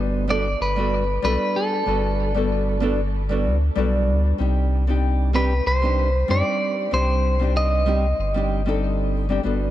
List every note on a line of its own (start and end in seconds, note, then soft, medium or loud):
0.00 0.56 G1 medium
0.00 0.25 G3 medium
0.00 0.25 B3 medium
0.00 0.26 D4 medium
0.00 0.26 F#4 medium
0.00 0.27 A4 medium
0.28 0.46 G3 medium
0.28 0.46 B3 medium
0.28 0.47 D4 medium
0.28 0.47 F#4 medium
0.28 0.47 A4 loud
0.28 0.59 D5 loud
0.61 1.19 G1 medium
0.61 1.24 B4 loud
0.76 1.02 G3 medium
0.76 1.03 B3 medium
0.76 1.03 D4 medium
0.76 1.03 F#4 medium
0.76 1.04 A4 medium
1.22 1.37 B1 medium
1.22 1.83 G3 medium
1.22 1.83 B3 medium
1.22 1.84 D4 medium
1.22 1.84 F#4 medium
1.22 1.84 A4 loud
1.22 1.57 B4 medium
1.56 2.78 A4 medium
1.86 3.46 G1 loud
1.86 2.31 G3 medium
1.86 2.31 B3 medium
1.86 2.32 D4 medium
1.86 2.32 F#4 medium
1.86 2.32 A4 medium
2.34 2.78 G3 medium
2.34 2.78 B3 medium
2.34 2.78 D4 medium
2.34 2.79 F#4 medium
2.34 2.79 A4 medium
2.80 2.98 G3 medium
2.80 2.99 B3 medium
2.80 2.99 D4 medium
2.80 3.00 F#4 medium
2.80 3.00 A4 medium
3.29 3.55 G3 medium
3.29 3.55 B3 medium
3.29 3.56 D4 medium
3.29 3.56 F#4 medium
3.29 3.56 A4 medium
3.45 3.70 D2 loud
3.75 4.10 B1 medium
3.75 4.36 G3 medium
3.75 4.36 B3 medium
3.75 4.36 D4 medium
3.75 4.37 F#4 medium
3.75 4.37 A4 loud
4.08 4.33 D2 loud
4.38 5.61 C2 loud
4.38 4.84 G3 medium
4.38 4.84 C4 medium
4.38 4.84 D4 medium
4.38 4.85 D#4 medium
4.38 4.85 G4 medium
4.87 5.30 G3 medium
4.87 5.31 C4 medium
4.87 5.31 D4 medium
4.87 5.32 D#4 medium
4.87 5.32 G4 medium
5.33 5.51 G3 medium
5.33 5.52 C4 medium
5.33 5.52 D4 medium
5.33 5.52 D#4 medium
5.33 5.53 G4 loud
5.33 5.67 B4 medium
5.66 6.24 C2 medium
5.66 6.30 C5 medium
5.82 6.08 G3 medium
5.82 6.08 C4 medium
5.82 6.09 D4 medium
5.82 6.09 D#4 medium
5.82 6.09 G4 medium
6.28 6.43 F#2 medium
6.28 6.88 G3 medium
6.28 6.89 C4 medium
6.28 6.89 D4 medium
6.28 6.89 D#4 medium
6.28 6.90 G4 loud
6.28 6.93 D5 medium
6.91 8.14 C2 medium
6.91 7.36 G3 medium
6.91 7.37 C4 medium
6.91 7.37 D4 medium
6.91 7.37 D#4 medium
6.91 7.38 G4 medium
6.91 7.56 C5 loud
7.40 7.83 G3 medium
7.40 7.83 C4 medium
7.40 7.84 D4 medium
7.40 7.84 D#4 medium
7.40 7.85 G4 medium
7.57 8.47 D#5 loud
7.86 8.04 G3 medium
7.86 8.04 C4 medium
7.86 8.04 D4 medium
7.86 8.05 D#4 medium
7.86 8.05 G4 loud
8.19 9.40 G1 loud
8.34 8.60 G3 medium
8.34 8.61 C4 medium
8.34 8.61 D4 medium
8.34 8.61 D#4 medium
8.34 8.62 G4 medium
8.66 9.26 G3 medium
8.66 9.26 C4 medium
8.66 9.26 D4 medium
8.66 9.27 D#4 medium
8.66 9.27 A4 loud
9.29 9.41 G3 medium
9.29 9.41 C4 medium
9.29 9.42 D4 medium
9.29 9.42 D#4 medium
9.29 9.42 G4 medium
9.43 9.71 G1 loud
9.43 9.71 G3 medium
9.43 9.71 B3 medium
9.43 9.71 D4 medium
9.43 9.71 F#4 medium
9.43 9.71 A4 medium